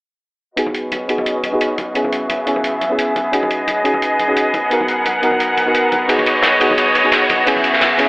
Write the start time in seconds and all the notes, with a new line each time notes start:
0.56 B3 C#4 D#4 F#4 G#4 B4 D#5, closed hi-hat
0.66 high conga
0.75 closed hi-hat
0.92 closed hi-hat, high conga
1.08 B3 D#4 F#4 G#4, closed hi-hat
1.18 high conga
1.26 closed hi-hat
1.44 closed hi-hat, high conga
1.52 B3 D#4 F#4 G#4
1.61 closed hi-hat
1.78 closed hi-hat, high conga
1.94 C#3 B3 C#4 E4 G#4 E5, closed hi-hat
2.04 high conga
2.13 closed hi-hat
2.30 closed hi-hat, high conga
2.46 B3 C#4 E4 G#4, closed hi-hat
2.56 high conga
2.64 closed hi-hat
2.81 closed hi-hat, high conga
2.90 B3 C#4 E4 G#4
2.99 closed hi-hat
3.16 closed hi-hat, high conga
3.32 C#4 D#4 F#4 G#4 D#5, closed hi-hat
3.43 high conga
3.51 closed hi-hat
3.68 closed hi-hat, high conga
3.84 C#4 D#4 F#4 G#4, closed hi-hat
3.94 high conga
4.02 closed hi-hat
4.19 closed hi-hat, high conga
4.28 C#4 D#4 F#4 G#4
4.37 closed hi-hat
4.54 closed hi-hat, high conga
4.70 B3 D#4 F#4 A#4 F#5, closed hi-hat
4.81 high conga
4.88 closed hi-hat
5.06 closed hi-hat, high conga
5.22 B3 D#4 F#4 A#4, closed hi-hat
5.31 high conga
5.40 closed hi-hat
5.57 closed hi-hat, high conga
5.66 B3 D#4 F#4 A#4
5.75 closed hi-hat
5.92 closed hi-hat, high conga
6.08 B3 D#4 F#4 G#4 C#5 D#5, closed hi-hat, ride
6.19 ride, high conga
6.26 closed hi-hat, ride
6.43 snare, closed hi-hat, ride, high conga
6.60 B3 D#4 F#4 G#4, closed hi-hat, ride
6.71 high conga
6.78 closed hi-hat, ride
6.95 closed hi-hat, ride, high conga
7.04 B3 D#4 F#4 G#4, ride
7.12 snare, closed hi-hat, ride
7.30 closed hi-hat, ride, high conga
7.46 C#3 B3 C#4 E4 G#4 E5, closed hi-hat, ride
7.56 high conga
7.64 closed hi-hat, ride
7.73 snare
7.81 snare, closed hi-hat, ride, high conga
7.98 B3 C#4 E4 G#4, snare, closed hi-hat, ride